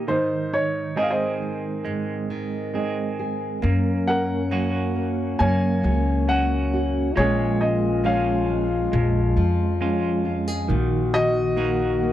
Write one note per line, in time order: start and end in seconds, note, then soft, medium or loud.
0.00 0.96 D#3 medium
0.00 0.16 A#3 soft
0.00 0.17 D#4 soft
0.00 0.17 G4 soft
0.00 0.10 D#5 medium
0.08 1.84 G#2 medium
0.08 3.63 D#3 medium
0.08 1.82 D#4 medium
0.08 0.53 C5 medium
0.53 2.74 D#4 soft
0.53 0.98 C#5 medium
0.96 2.29 D#3 soft
0.96 1.83 G#3 soft
0.96 2.73 C4 soft
0.96 2.74 G#4 medium
0.96 1.03 D#5 medium
1.03 1.10 F5 medium
1.10 2.84 C5 soft
1.10 2.70 D#5 medium
1.42 3.58 C4 soft
1.85 3.57 G#2 soft
1.85 2.73 G#3 medium
2.30 3.63 D#3 soft
2.74 3.62 G#3 soft
2.74 3.72 C4 soft
2.74 3.58 D#4 soft
2.74 3.72 G#4 soft
3.19 3.58 G#4 soft
3.62 7.11 F#2 medium
3.62 5.36 F#2 medium
3.62 4.51 A#3 medium
3.62 7.16 C#4 medium
4.07 6.27 C#4 soft
4.07 5.81 A#4 medium
4.07 5.44 F#5 medium
4.51 5.82 F#3 medium
4.51 5.39 A#3 medium
4.51 6.27 C#4 soft
4.51 6.28 F#4 medium
4.96 7.18 A#3 soft
5.39 5.81 F#2 medium
5.39 5.83 C#3 soft
5.39 6.27 A#3 medium
5.39 7.13 C#5 medium
5.39 6.30 G#5 medium
5.83 7.12 C#2 medium
5.83 7.11 F#3 soft
6.28 7.15 A#3 soft
6.28 7.25 C#4 soft
6.28 7.11 C#4 medium
6.28 7.25 F#4 soft
6.28 7.19 F#5 medium
6.74 7.12 F#4 medium
7.14 8.89 A#1 medium
7.14 8.93 A#2 medium
7.14 8.03 F3 soft
7.14 8.03 G#3 medium
7.14 10.41 F4 medium
7.14 8.89 G#4 medium
7.14 7.62 C#5 medium
7.19 8.48 G#3 soft
7.19 7.60 C#4 medium
7.19 10.24 G#4 medium
7.61 9.80 C#4 soft
7.61 8.01 D#5 medium
8.04 9.35 F3 medium
8.04 8.91 G#3 soft
8.04 9.80 C#4 medium
8.04 9.81 F4 medium
8.04 9.78 C#5 soft
8.04 9.77 F5 medium
8.49 10.69 G#3 soft
8.92 9.34 A#1 medium
8.92 10.69 F2 medium
8.92 9.80 G#3 medium
9.36 10.65 F2 medium
9.36 10.63 F3 soft
9.81 10.78 G#3 soft
9.81 10.64 C#4 soft
9.81 10.78 C#4 soft
9.81 10.78 F4 soft
10.25 10.48 F4 medium
10.48 10.69 G#4 soft
10.68 12.13 A#1 medium
10.68 11.57 A#2 medium
10.68 12.13 D#3 medium
10.68 12.13 F#4 loud
11.14 12.13 D#4 medium
11.14 12.13 F#4 medium
11.14 12.13 D#5 loud
11.57 12.13 D#3 medium
11.57 12.13 A#3 medium
11.57 12.13 D#4 medium
11.57 12.13 F#4 medium
12.02 12.13 A#3 medium